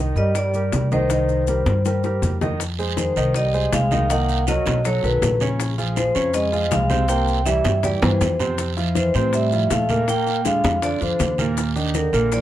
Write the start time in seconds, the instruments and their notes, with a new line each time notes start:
Already playing: upright bass C2
0.00 grand piano D#3 D#4 D#5
0.16 upright bass G2, grand piano G3 G4 A#4, trombone G3, vibraphone D#5, high bongo, high conga, maracas
0.35 trombone G3, vibraphone D5, high bongo, high conga, maracas
0.54 grand piano G3 G4 A#4, high bongo, high conga, maracas
0.72 upright bass C2, high bongo, low bongo, high conga, maracas
0.92 grand piano D#3 D#4 D#5, trombone D#3, vibraphone C5, high conga, maracas
1.10 grand piano D#3 D#4 D#5, high bongo, high conga, maracas
1.29 high bongo, high conga, maracas
1.47 grand piano G3 G4 A#4, high bongo, high conga, maracas
1.66 upright bass G2, high bongo, high conga, maracas
1.85 grand piano G3 G4 A#4, high bongo, high conga, maracas
2.04 grand piano G3 G4 A#4, high bongo, high conga, maracas
2.22 upright bass F2, low bongo, high conga, maracas
2.41 grand piano D#3 D#4 D#5, low bongo, high conga, maracas
2.60 high bongo, high conga, long guiro, maracas
2.78 grand piano G#3 G#4 C5, high bongo, high conga, maracas
2.97 trombone D#3, vibraphone C5, high bongo, high conga, short guiro, maracas
3.16 upright bass C2, grand piano D#3 D#4 D#5, high bongo, high conga, short guiro, maracas
3.34 trombone G3, vibraphone D#5, high bongo, high conga, long guiro, maracas
3.54 grand piano G#3 G#4 C5, high bongo, high conga, maracas
3.72 upright bass C2, trombone G#3, vibraphone F5, high bongo, low bongo, high conga, short guiro, maracas
3.91 grand piano D#3 D#4 D#5, high conga, short guiro, maracas
4.10 grand piano D#3 D#4 D#5, trombone A#3, vibraphone F#5, high bongo, high conga, long guiro, maracas
4.29 high bongo, high conga, maracas
4.47 trombone F#3, grand piano F#3 F#4 A#4, vibraphone D#5, high bongo, high conga, short guiro, maracas
4.66 upright bass B1, high bongo, high conga, short guiro, maracas
4.85 trombone F#3, grand piano F#3 F#4 A4, vibraphone C#5, high bongo, high conga, long guiro, maracas
5.03 upright bass B1, trombone D#3, grand piano F#3 F#4 A4, vibraphone B4, high bongo, high conga, maracas
5.22 upright bass A#1, high bongo, low bongo, high conga, short guiro, maracas
5.40 grand piano C#3 C#4 C#5, high conga, short guiro, maracas
5.59 high bongo, high conga, long guiro, maracas
5.78 grand piano F3 F4 G#4, high bongo, high conga, maracas
5.96 trombone F3, vibraphone C5, high bongo, high conga, short guiro, maracas
6.15 upright bass F2, grand piano C#3 C#4 C#5, high bongo, high conga, short guiro, maracas
6.34 trombone G#3, vibraphone D#5, high bongo, high conga, long guiro, maracas
6.52 grand piano F3 F4 G#4, high bongo, high conga, maracas
6.70 upright bass C2, trombone G#3, vibraphone F5, high bongo, low bongo, high conga, short guiro, maracas
6.89 grand piano C3 C4 C5, high conga, short guiro, maracas
7.08 grand piano C3 C4 C5, trombone A#3, vibraphone G5, high bongo, high conga, long guiro, maracas
7.27 high bongo, high conga, maracas
7.45 grand piano E3 E4 G4, trombone G3, vibraphone E5, high bongo, high conga, short guiro, maracas
7.64 upright bass G2, high bongo, high conga, short guiro, maracas
7.83 grand piano E3 E4 G4, trombone G3, vibraphone D5, high bongo, high conga, long guiro, maracas
8.02 upright bass G2, trombone E3, grand piano E3 E4 G4, vibraphone C5, low conga, maracas
8.21 upright bass F2, high bongo, low bongo, low conga, short guiro, maracas
8.39 grand piano C3 C4 C5, low conga, short guiro, maracas
8.58 high bongo, high conga, long guiro, maracas
8.77 grand piano F3 E4 F4, high bongo, high conga, maracas
8.95 trombone E3, vibraphone C5, high bongo, high conga, short guiro, maracas
9.14 upright bass A2, grand piano C3 C4 C5, high bongo, short guiro, maracas
9.33 trombone G3, vibraphone E5, high bongo, high conga, long guiro, maracas
9.52 grand piano F3 E4 F4, high bongo, high conga, maracas
9.70 upright bass A#2, trombone A3, vibraphone F5, high bongo, low bongo, high conga, short guiro, maracas
9.89 grand piano A#2 A#3 A#4, high conga, short guiro, maracas
10.07 grand piano A#2 A#3 A#4, trombone A#3, vibraphone G5, high bongo, long guiro, maracas
10.27 high bongo, high conga, maracas
10.45 grand piano D3 D4 F4, trombone G#3, vibraphone F5, high bongo, high conga, short guiro, maracas
10.64 upright bass F2, high bongo, high conga, short guiro, maracas
10.82 grand piano D3 D4 F4, trombone F3, vibraphone D5, high bongo, high conga, long guiro, maracas
11.01 upright bass F2, grand piano D3 D4 F4, trombone F3, vibraphone C5, high bongo, high conga, maracas
11.19 upright bass D#2, high bongo, low bongo, high conga, short guiro, maracas
11.38 grand piano A#2 A#3 A#4, high conga, short guiro, maracas
11.57 high bongo, high conga, long guiro, maracas
11.76 grand piano D#3 D4 D#4, high bongo, high conga, maracas
11.94 trombone D3, vibraphone A#4, high bongo, high conga, short guiro, maracas
12.13 upright bass A#1, grand piano A#2 A#3 A#4, high bongo, high conga, short guiro, maracas
12.32 trombone F3, vibraphone D5, high bongo, high conga, long guiro, maracas